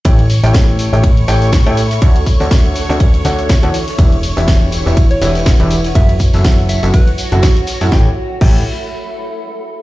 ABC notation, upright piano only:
X:1
M:4/4
L:1/16
Q:"Swing 16ths" 1/4=122
K:Amix
V:1 name="Upright piano"
[A,EGAcg] z2 [A,EGAcg]4 [A,EGAcg] z2 [A,EGAcg]2 z [A,EGAcg] z2 | [D,DFAcf] z2 [D,DFAcf]4 [D,DFAcf] z2 [D,DFAcf]2 z [E,DFAcf] z2 | [E,DEGBe] z2 [E,DEGBe]4 [E,DEGBe] z2 [E,DEGBe]2 z [E,DEGBe] z2 | [F,CEFAe] z2 [F,CEFAe]4 [F,CEFAe] z3 [F,CEFAf] z3 [A,,CEFAf] |
[EGAcg] z3 [EGAcg]2 z8 z2 |]